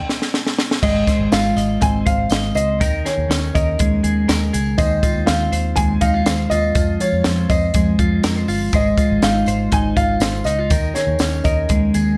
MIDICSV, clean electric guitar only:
0, 0, Header, 1, 2, 480
1, 0, Start_track
1, 0, Key_signature, -4, "major"
1, 0, Tempo, 493827
1, 803, Time_signature, 4, 2, 24, 8
1, 11833, End_track
2, 0, Start_track
2, 0, Title_t, "Clean electric guitar"
2, 0, Program_c, 0, 27
2, 810, Note_on_c, 0, 56, 81
2, 814, Note_on_c, 0, 75, 68
2, 1044, Note_on_c, 0, 72, 57
2, 1287, Note_on_c, 0, 65, 60
2, 1520, Note_off_c, 0, 75, 0
2, 1524, Note_on_c, 0, 75, 62
2, 1759, Note_on_c, 0, 60, 65
2, 1987, Note_off_c, 0, 72, 0
2, 1999, Note_on_c, 0, 72, 64
2, 2239, Note_off_c, 0, 75, 0
2, 2243, Note_on_c, 0, 75, 69
2, 2472, Note_off_c, 0, 72, 0
2, 2483, Note_on_c, 0, 72, 59
2, 2724, Note_on_c, 0, 51, 80
2, 2726, Note_off_c, 0, 72, 0
2, 2731, Note_on_c, 0, 70, 74
2, 2760, Note_off_c, 0, 56, 0
2, 2772, Note_off_c, 0, 60, 0
2, 2777, Note_off_c, 0, 65, 0
2, 2968, Note_on_c, 0, 68, 54
2, 3207, Note_on_c, 0, 61, 65
2, 3236, Note_off_c, 0, 75, 0
2, 3437, Note_off_c, 0, 70, 0
2, 3449, Note_on_c, 0, 70, 60
2, 3687, Note_on_c, 0, 56, 67
2, 3918, Note_off_c, 0, 68, 0
2, 3922, Note_on_c, 0, 68, 64
2, 4151, Note_off_c, 0, 70, 0
2, 4163, Note_on_c, 0, 70, 70
2, 4403, Note_off_c, 0, 68, 0
2, 4407, Note_on_c, 0, 68, 64
2, 4639, Note_off_c, 0, 51, 0
2, 4643, Note_on_c, 0, 51, 83
2, 4646, Note_off_c, 0, 70, 0
2, 4651, Note_on_c, 0, 72, 70
2, 4696, Note_off_c, 0, 61, 0
2, 4884, Note_off_c, 0, 68, 0
2, 4888, Note_on_c, 0, 65, 60
2, 5128, Note_on_c, 0, 60, 62
2, 5363, Note_off_c, 0, 72, 0
2, 5367, Note_on_c, 0, 72, 60
2, 5600, Note_off_c, 0, 56, 0
2, 5604, Note_on_c, 0, 56, 66
2, 5840, Note_off_c, 0, 65, 0
2, 5844, Note_on_c, 0, 63, 66
2, 5969, Note_off_c, 0, 63, 0
2, 5969, Note_on_c, 0, 65, 49
2, 6085, Note_off_c, 0, 72, 0
2, 6089, Note_on_c, 0, 72, 72
2, 6320, Note_off_c, 0, 65, 0
2, 6332, Note_on_c, 0, 65, 64
2, 6561, Note_off_c, 0, 51, 0
2, 6565, Note_on_c, 0, 53, 85
2, 6809, Note_off_c, 0, 65, 0
2, 6813, Note_on_c, 0, 65, 55
2, 7045, Note_off_c, 0, 60, 0
2, 7049, Note_on_c, 0, 60, 63
2, 7289, Note_off_c, 0, 72, 0
2, 7292, Note_on_c, 0, 72, 62
2, 7526, Note_off_c, 0, 56, 0
2, 7530, Note_on_c, 0, 56, 63
2, 7765, Note_off_c, 0, 65, 0
2, 7769, Note_on_c, 0, 65, 61
2, 8003, Note_off_c, 0, 72, 0
2, 8007, Note_on_c, 0, 70, 69
2, 8129, Note_off_c, 0, 70, 0
2, 8129, Note_on_c, 0, 72, 53
2, 8242, Note_off_c, 0, 65, 0
2, 8246, Note_on_c, 0, 65, 63
2, 8482, Note_off_c, 0, 72, 0
2, 8486, Note_off_c, 0, 56, 0
2, 8490, Note_on_c, 0, 56, 89
2, 8498, Note_on_c, 0, 72, 65
2, 8533, Note_off_c, 0, 65, 0
2, 8534, Note_off_c, 0, 60, 0
2, 8722, Note_on_c, 0, 65, 58
2, 8968, Note_on_c, 0, 63, 58
2, 8998, Note_off_c, 0, 53, 0
2, 9200, Note_off_c, 0, 72, 0
2, 9212, Note_on_c, 0, 72, 67
2, 9443, Note_off_c, 0, 63, 0
2, 9447, Note_on_c, 0, 63, 67
2, 9674, Note_off_c, 0, 65, 0
2, 9685, Note_on_c, 0, 65, 65
2, 9915, Note_off_c, 0, 72, 0
2, 9926, Note_on_c, 0, 72, 69
2, 10164, Note_off_c, 0, 65, 0
2, 10170, Note_off_c, 0, 63, 0
2, 10170, Note_on_c, 0, 63, 63
2, 10291, Note_off_c, 0, 63, 0
2, 10291, Note_on_c, 0, 65, 51
2, 10405, Note_off_c, 0, 72, 0
2, 10407, Note_on_c, 0, 51, 87
2, 10413, Note_on_c, 0, 70, 74
2, 10442, Note_off_c, 0, 56, 0
2, 10455, Note_off_c, 0, 65, 0
2, 10645, Note_on_c, 0, 68, 58
2, 10887, Note_on_c, 0, 61, 64
2, 11119, Note_off_c, 0, 70, 0
2, 11131, Note_on_c, 0, 70, 67
2, 11368, Note_on_c, 0, 56, 73
2, 11608, Note_off_c, 0, 68, 0
2, 11612, Note_on_c, 0, 68, 67
2, 11833, Note_off_c, 0, 51, 0
2, 11833, Note_off_c, 0, 56, 0
2, 11833, Note_off_c, 0, 61, 0
2, 11833, Note_off_c, 0, 68, 0
2, 11833, Note_off_c, 0, 70, 0
2, 11833, End_track
0, 0, End_of_file